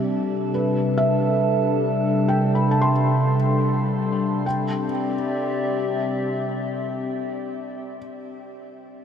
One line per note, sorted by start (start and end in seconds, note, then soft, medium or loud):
0.00 4.44 C3 medium
0.00 4.46 C3 medium
0.00 4.44 G3 medium
0.00 4.46 G3 medium
0.00 0.79 C4 medium
0.00 4.46 D4 medium
0.00 1.34 G4 medium
0.00 4.47 G4 soft
0.00 4.46 A4 medium
0.00 1.33 D5 medium
0.00 1.31 E5 medium
0.00 4.45 A5 medium
0.54 2.92 B4 medium
0.98 3.35 E5 medium
2.28 4.45 G5 medium
2.55 4.90 B5 soft
2.71 4.85 A5 soft
2.81 5.14 C6 soft
4.45 7.91 C3 medium
4.45 7.91 G3 medium
4.45 7.83 C4 medium
4.45 7.97 G5 soft
4.58 7.82 G4 medium
4.72 7.82 D5 medium
4.85 7.82 E5 medium